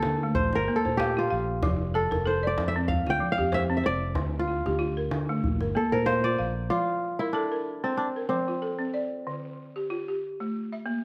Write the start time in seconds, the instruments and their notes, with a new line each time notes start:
Already playing: balafon A#3, kora A4 C5
0.02 fingered electric bass D3, djembe slap
0.23 balafon A3
0.35 fingered electric bass A#1, kora C5, djembe slap, djembe bass
0.53 fingered electric bass G1, balafon A#4, kora A#4, djembe slap
0.68 balafon A#3
0.76 kora A4
0.85 fingered electric bass A#2, balafon C5, djembe slap, djembe tone
0.97 kora G4, balafon F5, djembe slap
1.17 balafon F4, kora F4
1.30 fingered electric bass A#1, balafon F5
1.63 fingered electric bass F1, balafon F3, djembe slap, djembe bass
1.81 djembe slap
1.94 balafon A4, kora A4
2.11 fingered electric bass F1, balafon A#4, djembe slap, djembe tone
2.26 balafon A4, kora C5
2.43 balafon D5
2.47 kora D5
2.58 fingered electric bass F2, djembe slap
2.68 kora E5
2.76 balafon C4
2.88 kora F5, djembe slap, djembe bass
3.06 fingered electric bass D2, balafon F4, kora G5, djembe slap
3.20 balafon F3
3.32 kora F5
3.38 fingered electric bass F2, balafon G4, djembe slap, djembe tone
3.52 balafon C5, kora E5, djembe slap
3.70 balafon C4
3.77 kora E5
3.84 fingered electric bass F1, balafon C5, kora D5
4.15 fingered electric bass D2, balafon D3, djembe slap, djembe bass
4.34 djembe slap
4.39 kora F4
4.48 balafon F4
4.66 fingered electric bass D2, balafon G4, djembe slap, djembe tone
4.79 balafon F4, djembe slap
4.97 balafon A#4
5.11 fingered electric bass D3, djembe slap
5.29 balafon A3
5.43 fingered electric bass A#1, djembe bass
5.61 fingered electric bass G1, balafon A#4, djembe slap
5.74 balafon A#3, kora A4, djembe slap
5.92 fingered electric bass A#2, kora A#4, balafon C5, djembe tone
6.06 kora C5, balafon F5, djembe slap
6.24 balafon F4, kora D5
6.38 fingered electric bass A#1, balafon F5
6.70 balafon F3, kora F4
7.19 kora E4, balafon A#4
7.33 kora D4, balafon A4
7.52 balafon A#4
7.84 balafon C4, kora C4
7.97 kora D4
8.16 balafon A#4
8.29 balafon F3, kora C4
8.48 balafon F4
8.62 balafon A4
8.79 balafon C4
8.94 balafon D5
9.27 balafon D3
9.76 balafon G4
9.90 balafon F4
10.08 balafon G4
10.40 balafon A3
10.72 balafon E5
10.86 balafon A#3